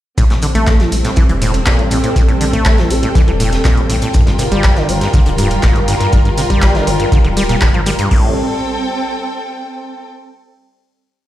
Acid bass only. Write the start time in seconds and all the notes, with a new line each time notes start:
0.18 A2
0.30 A2
0.43 D3
0.55 A3
0.80 E3
0.92 A3
1.05 A2
1.17 E3
1.29 E3
1.42 A2
1.67 A#2
1.79 A2
1.91 A2
2.04 A2
2.16 A2
2.29 A2
2.41 D3
2.53 A3
2.78 E3
2.90 A3
3.03 A2
3.15 E3
3.28 E3
3.40 A2
3.65 A#2
3.77 A2
3.90 A2
4.02 A2
4.14 G2
4.27 G2
4.39 C3
4.52 G3
4.76 D3
4.89 G3
5.01 G2
5.14 D3
5.26 D3
5.38 G2
5.63 A2
5.76 G2
5.88 G2
6.01 G2
6.13 G2
6.25 G2
6.38 C3
6.50 G3
6.75 D3
6.87 G3
7.00 G2
7.12 D3
7.24 D3
7.37 G3
7.49 A#2
7.62 D3
7.74 F3
7.86 G3
7.99 G2
8.11 A2